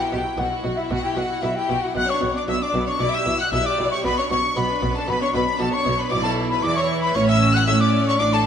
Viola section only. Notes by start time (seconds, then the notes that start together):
0.00 E4
0.12 F#4
0.26 E4
0.38 F#4
0.52 E4
0.64 F#4
0.78 E4
0.91 F#4
1.04 E4
1.18 F#4
1.31 E4
1.44 F#4
1.57 E4
1.71 F#4
1.84 E4
1.96 B3
2.09 D4
2.22 B3
2.36 D4
2.49 B3
2.62 D4
2.75 B3
2.87 D4
3.01 E4
3.15 G4
3.28 E4
3.40 G4
3.53 E4
3.66 G4
3.80 E4
3.93 G4
4.06 B3
4.19 D4
4.31 B3
4.43 D4
4.57 B3
4.70 D4
4.84 B3
4.96 D4
5.09 B3
5.22 D4
5.35 B3
5.47 D4
5.61 B3
5.73 D4
5.86 B3
5.99 D4
6.12 E4
6.64 E4
7.16 C#4
7.68 C#4
8.20 D4